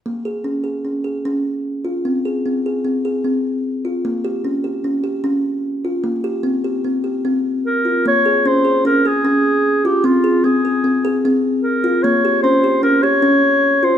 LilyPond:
<<
  \new Staff \with { instrumentName = "Clarinet" } { \time 5/4 \key bes \dorian \tempo 4 = 150 r1 r4 | r1 r4 | r1 r4 | r1 bes'4 |
des''4 c''4 bes'8 aes'2 g'8 | f'4 aes'2 r4 bes'4 | des''4 c''4 bes'8 des''2 c''8 | }
  \new Staff \with { instrumentName = "Kalimba" } { \time 5/4 \key bes \dorian bes8 aes'8 des'8 aes'8 des'8 aes'8 des'4 r8 f'8 | c'8 aes'8 c'8 aes'8 c'8 aes'8 c'4 r8 f'8 | bes8 g'8 des'8 g'8 des'8 g'8 des'4 r8 f'8 | bes8 g'8 c'8 g'8 c'8 g'8 c'4 r8 f'8 |
bes8 aes'8 des'8 aes'8 des'8 aes'8 des'4 r8 f'8 | c'8 aes'8 c'8 aes'8 c'8 aes'8 c'4 r8 f'8 | bes8 g'8 des'8 g'8 des'8 g'8 des'4 r8 f'8 | }
>>